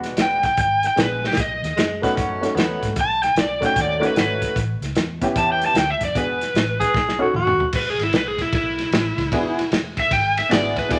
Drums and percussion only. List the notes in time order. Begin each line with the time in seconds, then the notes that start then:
0.04 snare, closed hi-hat
0.17 snare, closed hi-hat
0.43 kick, snare, closed hi-hat
0.57 kick, snare, closed hi-hat
0.83 snare, closed hi-hat
0.97 snare, closed hi-hat
1.24 snare
1.33 snare, closed hi-hat
1.37 kick, snare
1.64 snare, closed hi-hat
1.77 snare, closed hi-hat
2.03 kick, snare, closed hi-hat
2.17 kick, snare, closed hi-hat
2.43 snare, closed hi-hat
2.57 snare, closed hi-hat
2.83 kick, snare, closed hi-hat
2.96 kick, snare, closed hi-hat
3.23 snare, closed hi-hat
3.36 snare, closed hi-hat
3.62 kick, snare, closed hi-hat
3.76 kick, snare, closed hi-hat
4.03 snare, closed hi-hat
4.16 snare, closed hi-hat
4.42 kick, snare, closed hi-hat
4.56 kick, snare, closed hi-hat
4.82 snare, closed hi-hat
4.95 snare, closed hi-hat
5.22 kick, snare, closed hi-hat
5.36 kick, snare, closed hi-hat
5.61 snare, closed hi-hat
5.75 snare, closed hi-hat
6.01 kick, snare, closed hi-hat
6.15 kick, snare, closed hi-hat
6.41 snare, closed hi-hat
6.55 snare, closed hi-hat
6.81 kick, snare, closed hi-hat
6.94 kick, snare
7.09 snare
7.35 mid tom
7.47 mid tom
7.60 floor tom
7.73 kick, snare, crash
7.99 snare, ride
8.13 snare, ride
8.38 kick, snare, ride
8.53 kick, snare, ride
8.78 snare, ride
8.92 snare, ride
9.18 kick, snare, ride
9.32 kick, snare, ride
9.59 snare, ride
9.72 snare, ride
9.97 kick, snare, ride
10.11 kick, snare, ride
10.37 snare, ride
10.51 snare, ride
10.76 kick, snare, ride
10.91 kick, snare, ride